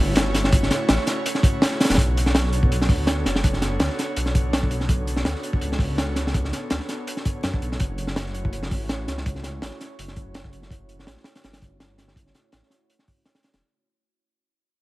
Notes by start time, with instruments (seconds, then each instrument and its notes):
Already playing: detuned saw bass G1
0.00 analog synth pad A3 C#4 E4 F#4 C#5
0.16 snare, closed hi-hat
0.34 snare, closed hi-hat
0.44 snare
0.52 analog synth pad A3 C#4 E4 F#4 C#5, kick, closed hi-hat
0.63 snare
0.71 snare, closed hi-hat
0.89 detuned saw bass A1, snare, closed hi-hat
0.98 snare
1.07 snare, closed hi-hat
1.26 closed hi-hat
1.35 snare
1.43 kick, closed hi-hat
1.53 analog synth pad A3 C#4 E4 F#4 C#5
1.62 snare, closed hi-hat
1.72 snare
1.80 snare, closed hi-hat
1.84 snare, closed hi-hat
1.90 detuned saw bass E1, snare, closed hi-hat
1.94 detuned saw bass B1, kick, snare, closed hi-hat
1.98 analog synth pad B3 D4 F#4 A4 C#5, closed hi-hat
2.17 closed hi-hat
2.26 snare
2.35 snare, closed hi-hat
2.44 snare
2.53 closed hi-hat
2.63 kick
2.72 closed hi-hat
2.81 snare
2.89 detuned saw bass D2, analog synth pad B3 D4 F#4 A4 C#5, kick, open hi-hat
3.07 snare, closed hi-hat
3.26 detuned saw bass F#1, snare, closed hi-hat
3.36 snare
3.44 analog synth pad B3 D4 F#4 A4 C#5, kick, closed hi-hat
3.53 snare
3.62 snare, closed hi-hat
3.80 detuned saw bass D2, snare, closed hi-hat
3.89 snare
3.99 snare, closed hi-hat
4.16 detuned saw bass B1, closed hi-hat
4.26 snare
4.35 analog synth pad B3 D4 F#4 A4 C#5, kick, closed hi-hat
4.53 snare, closed hi-hat
4.63 kick
4.71 closed hi-hat
4.81 snare
4.89 analog synth pad B3 D4 F#4 A4 C#5, kick, closed hi-hat
5.07 closed hi-hat
5.16 snare
5.25 detuned saw bass D2, snare, closed hi-hat
5.35 snare
5.43 closed hi-hat
5.53 kick
5.61 detuned saw bass C#2, closed hi-hat
5.72 snare
5.79 analog synth pad B3 D4 F#4 A4 C#5, kick, open hi-hat
5.98 snare, closed hi-hat
6.16 snare, closed hi-hat
6.27 snare
6.34 analog synth pad B3 D4 F#4 A4 C#5, kick, closed hi-hat
6.45 snare
6.53 snare, closed hi-hat
6.70 detuned saw bass D2, snare, closed hi-hat
6.80 snare
6.89 snare, closed hi-hat
7.07 closed hi-hat
7.17 snare
7.25 kick, closed hi-hat
7.35 analog synth pad B3 D4 F#4 A4 C#5
7.43 detuned saw bass F#2, snare, closed hi-hat
7.54 kick
7.62 detuned saw bass B1, closed hi-hat
7.72 snare
7.80 detuned saw bass F#1, analog synth pad A3 C#4 E4 F#4 C#5, kick, closed hi-hat
7.98 closed hi-hat
8.07 snare
8.16 snare, closed hi-hat
8.26 snare
8.34 closed hi-hat
8.45 kick
8.53 closed hi-hat
8.63 snare
8.71 detuned saw bass A1, analog synth pad A3 C#4 E4 F#4 C#5, kick, open hi-hat
8.89 snare, closed hi-hat
9.07 detuned saw bass C#2, snare, closed hi-hat
9.18 snare
9.25 analog synth pad A3 C#4 E4 F#4 C#5, kick, closed hi-hat
9.35 snare
9.43 snare, closed hi-hat
9.62 detuned saw bass A1, snare, closed hi-hat
9.71 snare
9.81 snare, closed hi-hat
9.99 detuned saw bass F#1, closed hi-hat
10.08 snare
10.16 analog synth pad A3 C#4 E4 F#4 C#5, kick, closed hi-hat
10.34 snare, closed hi-hat
10.44 kick
10.53 closed hi-hat
10.62 snare
10.71 analog synth pad A3 C#4 E4 F#4 C#5, kick, closed hi-hat
10.89 closed hi-hat
10.99 snare
11.07 detuned saw bass A1, snare, closed hi-hat
11.17 snare
11.24 snare, closed hi-hat
11.35 snare, closed hi-hat
11.44 detuned saw bass G1, snare, closed hi-hat
11.53 snare, closed hi-hat
11.62 analog synth pad A3 C#4 E4 F#4 C#5, kick, closed hi-hat
11.80 snare, closed hi-hat
11.98 snare, closed hi-hat
12.08 snare
12.16 analog synth pad A3 C#4 E4 F#4 C#5, kick, closed hi-hat
12.27 snare
12.35 snare, closed hi-hat
12.52 detuned saw bass A1, snare, closed hi-hat
12.63 snare
12.70 snare, closed hi-hat
12.90 closed hi-hat
12.99 snare
13.08 kick, open hi-hat
13.17 analog synth pad A3 C#4 E4 F#4 C#5
13.25 snare, closed hi-hat
13.35 snare, closed hi-hat
13.43 snare, closed hi-hat
13.53 detuned saw bass E1, snare, closed hi-hat